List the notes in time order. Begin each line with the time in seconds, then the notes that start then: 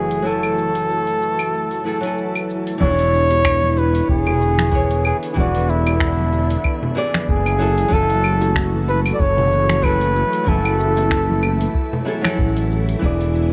Already playing: F#1 E3 F#3 A3 E4 F#4 G#4
0.11 open hi-hat, cabasa
0.23 F#3 E4, cabasa
0.27 A4 G#5
0.43 open hi-hat, claves
0.58 cabasa
0.75 open hi-hat, cabasa
0.90 cabasa
1.07 open hi-hat
1.22 cabasa
1.39 open hi-hat, cabasa, claves
1.54 cabasa
1.71 open hi-hat, cabasa
1.84 F#3 E4 G#4 A4, cabasa
2.00 F#3 E4, open hi-hat, cabasa
2.05 A4 G#5
2.18 cabasa
2.35 open hi-hat, claves
2.50 cabasa
2.67 open hi-hat, cabasa
2.78 E1 D3 E3 B3 E4 C#5, kick, high conga, cabasa
2.82 D4 G#4
2.99 open hi-hat
3.14 cabasa
3.31 open hi-hat, high bongo, cabasa
3.45 finger snap, kick, cabasa, claves
3.63 high conga
3.77 B4, high bongo, cabasa
3.95 open hi-hat, cabasa
4.09 E1 G#4, kick, cabasa
4.27 high bongo, low conga, claves
4.41 cabasa
4.58 finger snap, open hi-hat, high conga, cabasa
4.71 E3 E4 G#4 C#5, kick, cabasa
4.91 open hi-hat
5.05 G#4, cabasa, claves
5.23 open hi-hat, cabasa
5.32 E3 G#4
5.36 E1 D4 E4 F#4 G#4, kick, high conga, cabasa
5.40 D5
5.55 open hi-hat
5.69 E4, cabasa
5.87 open hi-hat, high bongo, cabasa, claves
6.00 finger snap, kick, cabasa
6.19 high conga
6.33 high bongo, cabasa
6.50 open hi-hat, cabasa
6.64 kick, cabasa, claves
6.83 low conga
6.95 E3 E4 G#4 D5, high bongo, cabasa
7.14 finger snap, open hi-hat, high conga, cabasa
7.28 F#1 G#4, kick, cabasa
7.46 open hi-hat, claves
7.59 E3 F#3 A3 E4 F#4 G#4 A4, cabasa
7.78 open hi-hat, cabasa
7.88 F#3 E4, kick, high conga
7.92 F#1 A4 G#5, cabasa
8.10 open hi-hat
8.24 cabasa, claves
8.41 open hi-hat, high bongo, cabasa
8.56 finger snap, kick, cabasa
8.74 high conga
8.88 B4, high bongo, cabasa
9.06 open hi-hat, cabasa, claves
9.14 D5
9.20 F#1 C#5, kick, cabasa
9.38 high bongo, low conga
9.52 cabasa
9.69 finger snap, open hi-hat, high conga, cabasa
9.82 F#3 E4 G#4 A4 B4, kick, cabasa, claves
10.01 open hi-hat
10.16 E4, cabasa
10.33 open hi-hat, cabasa
10.44 F#1 F#3 E4, kick, high conga
10.48 A4 G#5, cabasa
10.65 open hi-hat, claves
10.80 cabasa
10.97 open hi-hat, high bongo, cabasa
11.11 finger snap, kick, cabasa
11.30 high conga
11.43 high bongo, cabasa, claves
11.61 open hi-hat, cabasa
11.75 kick, cabasa
11.93 low conga
12.05 F#3 E4 G#4 A4, high bongo, cabasa
12.21 F#3 E4, finger snap, open hi-hat, high conga, claves
12.25 G#4 A4, cabasa
12.39 A1, kick, cabasa
12.56 open hi-hat, cabasa
12.71 cabasa
12.89 open hi-hat, cabasa
12.99 E1 D3 E3 B3 E4, kick, high conga
13.03 G#4 D5, cabasa
13.21 open hi-hat
13.35 cabasa